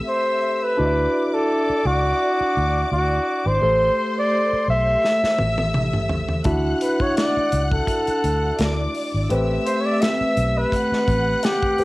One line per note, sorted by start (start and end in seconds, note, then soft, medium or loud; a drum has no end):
0.00 0.74 A3 medium
0.00 0.75 C4 medium
0.00 0.75 G4 medium
0.00 0.75 A4 medium
0.00 0.76 E5 medium
0.00 0.77 E6 medium
0.08 0.65 C5 medium
0.63 1.26 B4 medium
0.77 1.06 D2 medium
0.77 3.57 D4 medium
0.77 3.58 E4 medium
0.77 3.58 F#4 medium
0.77 3.59 D5 medium
0.77 0.86 D#5 medium
0.77 3.58 D6 medium
0.85 3.62 E5 medium
1.26 1.36 B4 medium
1.34 1.88 A4 medium
1.70 muted fingered electric bass stroke soft
1.85 2.12 C#2 medium
1.85 2.92 F#4 loud
2.41 muted fingered electric bass stroke soft
2.57 2.83 D2 medium
2.92 3.18 D2 medium
2.92 3.49 F#4 medium
3.46 3.58 G#1 medium
3.46 4.17 C5 loud
3.61 3.89 A1 medium
3.61 6.42 A3 medium
3.61 6.42 G4 soft
3.61 6.42 A4 medium
3.61 5.01 C5 medium
3.61 6.43 C5 medium
3.61 5.01 C6 medium
4.19 4.66 D5 medium
4.53 muted fingered electric bass stroke soft
4.68 4.95 B1 medium
4.68 6.07 E5 loud
5.03 6.43 E5 medium
5.03 6.43 E6 medium
5.03 snare soft
5.24 muted fingered electric bass stroke soft
5.24 snare soft
5.39 6.26 A1 medium
5.39 high tom medium
5.58 high tom medium
5.74 mid tom medium
5.94 mid tom medium
6.09 floor tom medium
6.29 floor tom medium
6.44 6.72 D2 medium
6.44 9.25 D4 medium
6.44 9.26 E4 medium
6.44 9.26 F#4 medium
6.44 9.27 E5 medium
6.44 8.55 F#5 medium
6.44 8.55 F#6 medium
6.44 kick loud
6.44 closed hi-hat medium
6.81 7.03 B4 medium
6.81 closed hi-hat medium
7.00 7.17 C#5 medium
7.00 kick medium
7.17 7.68 D5 medium
7.17 snare medium
7.17 closed hi-hat medium
7.37 muted fingered electric bass stroke soft
7.52 7.79 C#2 medium
7.52 closed hi-hat medium
7.72 8.91 A4 medium
7.72 kick medium
7.87 kick medium
7.87 closed hi-hat medium
8.07 muted fingered electric bass stroke soft
8.07 closed hi-hat soft
8.24 8.51 D2 medium
8.24 closed hi-hat medium
8.59 8.86 D2 medium
8.59 9.29 D5 medium
8.59 9.29 D6 medium
8.59 snare loud
8.59 closed hi-hat medium
8.94 open hi-hat medium
9.14 9.26 G#1 medium
9.29 9.57 A1 medium
9.29 11.74 A3 medium
9.29 11.75 C4 medium
9.29 11.74 G4 medium
9.29 11.75 B4 medium
9.29 10.69 E5 medium
9.29 10.69 E6 medium
9.29 closed hi-hat medium
9.66 9.82 C5 medium
9.66 closed hi-hat medium
9.81 9.87 C#5 medium
9.86 10.03 D5 medium
10.01 10.59 E5 medium
10.01 snare loud
10.01 closed hi-hat medium
10.21 muted fingered electric bass stroke soft
10.37 10.64 B1 medium
10.37 closed hi-hat medium
10.58 11.46 B4 medium
10.72 11.84 F#5 medium
10.72 11.84 F#6 medium
10.72 kick medium
10.72 closed hi-hat medium
10.92 muted fingered electric bass stroke soft
10.92 snare soft
11.08 11.34 A1 medium
11.08 kick medium
11.08 closed hi-hat medium
11.43 11.84 G4 medium
11.43 snare loud
11.43 closed hi-hat medium
11.63 kick medium
11.78 11.84 A3 soft
11.78 11.84 G4 soft
11.78 11.84 B4 soft
11.78 11.84 C5 soft
11.78 muted fingered electric bass stroke soft
11.78 open hi-hat medium